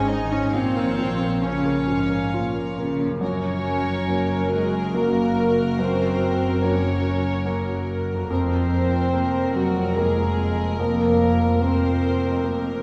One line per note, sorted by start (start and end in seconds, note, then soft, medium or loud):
0.00 0.50 G#1 medium
0.00 0.50 G#2 medium
0.00 0.57 G#2 medium
0.00 0.23 D#3 soft
0.00 0.57 D#3 soft
0.00 0.23 G#3 soft
0.00 0.57 G#3 soft
0.00 0.09 D#4 soft
0.00 0.58 D#4 soft
0.00 0.57 G#4 soft
0.00 0.56 C5 soft
0.00 0.57 C5 soft
0.00 0.52 D#5 medium
0.00 0.52 G#5 medium
0.08 0.33 D#4 medium
0.08 0.31 D#4 medium
0.08 0.45 D#4 soft
0.08 0.31 D#5 medium
0.24 0.58 D#3 soft
0.31 0.54 G#3 soft
0.31 0.54 C#4 medium
0.31 0.54 C#5 medium
0.53 3.00 A#1 medium
0.53 3.24 A#2 medium
0.53 3.17 A#2 soft
0.53 1.36 A#2 medium
0.53 1.45 C4 medium
0.53 1.42 C4 medium
0.53 1.42 C5 medium
0.53 1.43 C#5 medium
0.53 1.43 F5 medium
0.76 1.13 A#4 soft
0.84 2.91 F3 soft
0.99 1.35 F3 soft
1.14 3.11 A#3 soft
1.22 1.58 A#4 soft
1.43 1.86 C#3 medium
1.43 1.80 F3 soft
1.43 2.77 C#4 soft
1.43 2.77 C#4 medium
1.43 2.03 A#4 soft
1.43 2.77 C#5 medium
1.43 2.97 C#5 medium
1.43 2.97 F5 soft
1.66 2.01 A#4 soft
1.75 2.32 F4 soft
1.88 2.33 G#2 medium
1.88 2.23 F3 soft
2.04 2.61 A#4 soft
2.10 2.46 A#4 soft
2.33 2.78 A#2 medium
2.33 3.24 F4 soft
2.33 2.69 F4 soft
2.55 2.91 A#3 soft
2.62 3.15 A#4 soft
2.78 3.21 C#3 medium
2.78 3.13 A#4 soft
2.92 3.24 F3 soft
2.99 3.21 A#3 soft
3.04 6.94 F#2 soft
3.08 6.98 F#3 soft
3.12 7.02 A#3 soft
3.17 7.07 A#4 soft
3.21 8.27 F#1 medium
3.21 4.04 F#2 soft
3.21 8.26 F#2 medium
3.21 4.47 C#4 medium
3.21 8.26 F#4 medium
3.21 8.26 A#4 medium
3.21 8.27 A#4 medium
3.21 4.46 C#5 medium
4.08 4.90 F#3 soft
4.08 4.90 A#3 soft
4.08 4.90 A#4 soft
4.51 4.94 G#3 medium
4.51 4.94 G#4 medium
4.94 5.75 F#3 soft
4.94 5.75 A#3 soft
4.94 5.79 A#3 medium
4.94 5.78 A#4 medium
4.94 5.75 A#4 soft
5.78 6.59 F#2 soft
5.78 6.63 C4 medium
5.78 6.59 C5 medium
6.62 7.41 F#3 soft
6.62 7.42 A#3 soft
6.62 7.86 C#4 medium
6.62 7.42 A#4 soft
6.62 7.88 C#5 medium
7.45 8.26 F#3 soft
7.45 8.26 A#3 soft
7.45 8.26 A#4 soft
8.12 12.02 F2 soft
8.17 12.07 A#3 soft
8.21 12.11 A#4 soft
8.30 12.83 F1 medium
8.30 9.11 F2 medium
8.30 12.83 F2 medium
8.30 9.51 C4 medium
8.30 12.83 A#4 medium
8.30 9.50 C5 medium
9.13 9.92 A#3 soft
9.13 9.92 A#4 soft
9.55 9.96 F#3 medium
9.55 9.96 F#4 medium
9.96 10.79 G#3 medium
9.96 10.76 A#3 soft
9.96 10.79 G#4 medium
9.96 10.76 A#4 soft
10.80 11.59 F2 medium
10.80 11.60 A#3 medium
10.80 11.61 A#4 medium
11.61 12.40 A#3 soft
11.61 12.83 C4 medium
11.61 12.40 A#4 soft
11.61 12.83 C5 medium
12.44 12.83 A#3 soft
12.44 12.83 A#4 medium